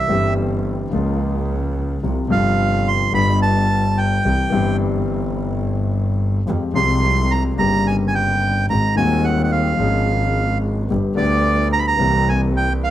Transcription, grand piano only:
0.08 G1 G2 E3 G3 C4 G4
0.90 C#2 C#3 F3 A#3
0.94 F4
2.03 C2 C3 F3 G3 F4
2.28 G1 G2 C3 F3 G3 F4
3.12 G1 G2 D3 G3 B3 F4
4.25 C2 C3 E3 G3 C4 G4
4.50 G1 G2 E3 G3 C4
4.54 G4
6.47 F2 F3 G#3 C4 G4
6.74 C2 C3 F3 G#3 C4 G4
7.56 G1 G2 C#3 G3 A#3
7.60 G4
8.70 G#1 G#2 D#3 G#3 C4 F#4
8.95 D#1 D#2 D#3 G#3 C4 F#4
9.78 G#1 G#2 F3 G#3 C#4 G#4
10.90 G1 G2 D3 G3 B3 G4
11.15 D2 D3 G3 B3
11.19 G4
11.97 C2 C3 E3 A#3 C4 G4

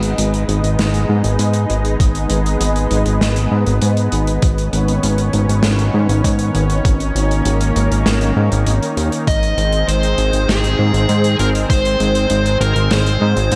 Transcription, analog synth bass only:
Already playing: G#1
0.18 G#1
0.48 G#1
0.64 G#1
0.79 G#1
1.09 G#2
1.24 G#1
1.39 G#2
1.70 G#1
2.00 G#1
2.30 G#1
2.61 G#1
2.91 G#1
3.06 G#1
3.21 G#1
3.52 G#2
3.67 G#1
3.82 G#2
4.13 G#1
4.43 G#1
4.73 G#1
5.03 G#1
5.34 G#1
5.49 G#1
5.64 G#1
5.94 G#2
6.09 G#1
6.24 G#2
6.55 G#1
6.85 G#1
7.15 G#1
7.46 G#1
7.76 G#1
7.91 G#1
8.06 G#1
8.37 G#2
8.52 G#1
8.67 G#1
8.97 D#2
9.27 G#1
9.58 G#1
9.88 G#1
10.18 G#1
10.33 G#1
10.49 G#1
10.79 G#2
10.94 G#1
11.09 G#2
11.39 G#1
11.70 G#1
12.00 G#1
12.31 G#1
12.61 G#1
12.76 G#1
12.91 G#1
13.21 G#2
13.37 G#1
13.52 G#2

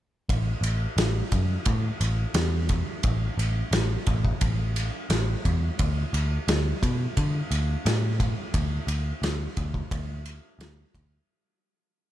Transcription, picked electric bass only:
0.29 A1
0.61 A1
0.97 A1
1.32 F#2
1.66 A2
2.01 A1
2.34 E2
3.04 A1
3.37 A1
3.71 A1
4.07 A1
4.42 A1
5.10 A1
5.45 E2
5.80 D2
6.13 D2
6.48 D2
6.82 B2
7.17 D3
7.51 D2
7.86 A2
8.54 D2
8.87 D2
9.22 D2
9.57 D2
9.91 D2
10.59 D2
10.94 D2

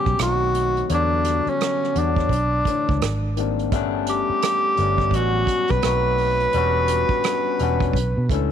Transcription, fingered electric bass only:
0.06 B1
0.19 B1
0.90 E2
1.46 muted fingered electric bass stroke
1.96 E2
2.29 B1
2.89 C#2
3.02 G#1
3.73 G1
4.29 muted fingered electric bass stroke
4.79 G1
5.11 A1
5.71 B1
5.84 B1
6.54 E1
7.09 muted fingered electric bass stroke
7.60 E1
7.94 B1
8.17 B2
8.30 C#2

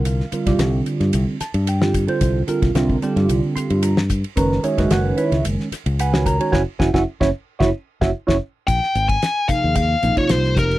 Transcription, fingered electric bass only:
Already playing: C2
0.32 muted fingered electric bass stroke
0.47 C2
0.59 C2
1.00 G2
1.14 C2
1.41 muted fingered electric bass stroke
1.54 G2
2.22 C2
2.62 C2
2.75 C2
3.16 G2
3.29 C2
3.56 muted fingered electric bass stroke
3.70 G2
4.37 F#1
4.78 F#1
4.90 F#1
5.32 C#2
5.44 F#1
5.72 muted fingered electric bass stroke
5.86 C#2
6.53 F#1
6.80 F#1
7.21 F#1
7.61 F#1
8.02 F#1
8.29 F#1
8.68 A#1
8.95 G#1
9.49 muted fingered electric bass stroke
9.64 D#2
10.03 A#1
10.30 C2
10.57 F1

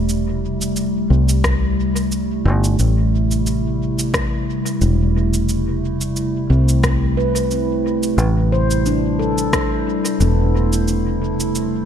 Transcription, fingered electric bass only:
Already playing: E1
1.10 C2
2.45 G1
2.79 A1
4.81 E1
6.50 C2
8.18 A1
10.20 E1

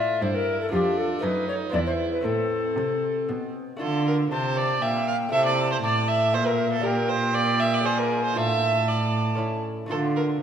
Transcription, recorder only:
Already playing: E5
0.22 C5
0.35 A#4
0.61 A4
0.72 G4
0.98 A4
1.23 B4
1.48 C#5
1.73 D5
1.86 C5
2.13 B4
2.25 A4
4.31 A5
4.82 G5
5.32 A5
5.83 A5
6.34 E5
6.84 G5
7.85 G#5
8.37 A5

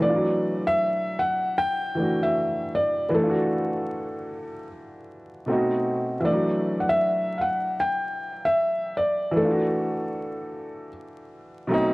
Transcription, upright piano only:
Already playing: E3
0.00 A3
0.05 D4
0.09 F4
0.16 F#3
1.95 E3 A3
1.99 D4 F#4
3.10 E3
3.15 A3
3.19 D4
3.23 F4
3.30 F#4
5.46 B2 A3 C4
5.51 D#4 F#4
6.20 E3
6.24 A3
6.29 D4
6.33 F#3
9.31 E3
9.36 A3
9.40 D4
9.45 F4
9.51 F#4
11.67 B2 F#3 A3
11.72 C4 D#4

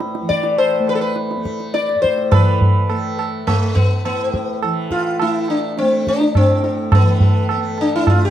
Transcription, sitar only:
0.29 D5
0.58 C5
0.89 B4
0.95 A4
1.01 B4
1.74 D5
2.02 C5
2.31 A4 B4
2.89 A4
3.19 A4
3.47 A3
3.75 B3
4.05 B3
4.62 A4
4.92 F4
5.22 E4
5.50 D4
5.79 C4
6.08 D4
6.37 C4
6.64 A4
6.95 B3
7.22 A4
7.51 A4
7.81 D4
7.96 E4
8.10 F4
8.25 G4

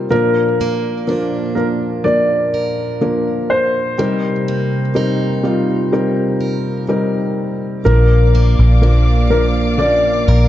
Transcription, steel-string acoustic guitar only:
Already playing: C3 A#3 D#4 A#4
0.12 A#2
0.61 A#3
1.09 D4
2.54 A#4
3.99 C3
4.48 A#3
4.96 D#4
6.41 A#4
7.86 A#2
8.35 A#3
8.83 D4
10.28 A#4

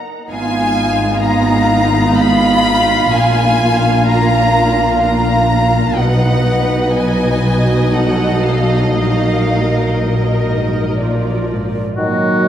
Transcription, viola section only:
0.29 B3 D#4
3.11 A#3 D4
5.97 F#3 D#4
11.01 F3 F4

